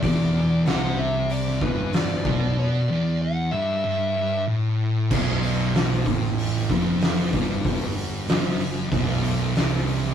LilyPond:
<<
  \new Staff \with { instrumentName = "Lead electric guitar" } { \time 4/4 \key b \minor \tempo 4 = 94 d''4 fis''8 e''8 d''8 b'8 d''4 | d''4 fis''8 e''4. r4 | r1 | r1 | }
  \new Staff \with { instrumentName = "Distorted electric guitar" } { \clef bass \time 4/4 \key b \minor e,4 c4. g,4 b,8~ | b,8 e,4 g,8 g,4 a,4 | b,,4. a,4 eis,4 g,8~ | g,4 fis,4 b,,4 c,4 | }
  \new Staff \with { instrumentName = "Distorted electric guitar" } { \clef bass \time 4/4 \key b \minor e,4 c4. g,4 b,8~ | b,8 e,4 g,8 g,4 a,4 | b,,4. a,4 eis,4 g,8~ | g,4 fis,4 b,,4 c,4 | }
  \new Staff \with { instrumentName = "Fingered electric bass" } { \clef bass \time 4/4 \key b \minor e,,4 c,4. g,,4 b,,8 | r1 | b,,,4. a,,4 eis,,4 g,,8~ | g,,4 fis,,4 b,,,4 c,,4 | }
  \new DrumStaff \with { instrumentName = "Drums" } \drummode { \time 4/4 <hho bd>4 <hho sn>4 hho16 sn16 bd8 <hho sn>8 bd8 | r4 r4 r4 r4 | <cymc bd>8 hho8 <hho sn>8 <hho bd>8 hho16 sn16 <hho bd>8 <hho sn>8 <hho bd>8 | <hho bd>8 hho8 <hho sn>8 hho8 <hho bd>16 sn16 hho8 <hho sn>8 hho16 sn16 | }
>>